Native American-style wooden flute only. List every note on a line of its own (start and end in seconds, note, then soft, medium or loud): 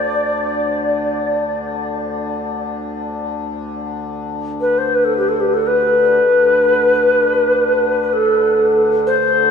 0.00 1.73 D5 medium
4.61 4.80 B4 medium
4.78 4.96 C5 medium
4.95 5.06 B4 medium
5.05 5.16 A4 soft
5.17 5.30 G4 medium
5.29 5.42 A4 medium
5.40 5.55 G4 medium
5.54 5.69 A4 medium
5.67 8.02 B4 medium
8.02 8.15 B4 medium
8.13 8.80 A4 medium
9.07 9.51 C5 medium